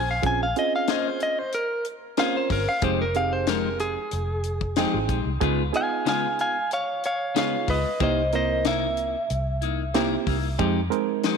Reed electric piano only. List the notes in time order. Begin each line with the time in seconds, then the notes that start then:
0.22 C4 C#4 F4 G#4
0.56 C4 C#4 F4 G#4
2.18 C4 C#4 F4 A#4
2.83 C4 D#4 G4 G#4
3.15 C4 D#4 G4 G#4
4.77 C4 D#4 G#4 G5
5.40 B3 D#4 F4 G#4
5.73 B3 D#4 F4 G#4
7.36 B3 D#4 F4 G#4
8.00 A#3 D#4 E4 G4
8.33 A#3 C4 E4 A#4
9.94 A#3 C4 E4 G4
10.59 G#3 C4 D#4 G4
10.90 G#3 C4 D#4 A#4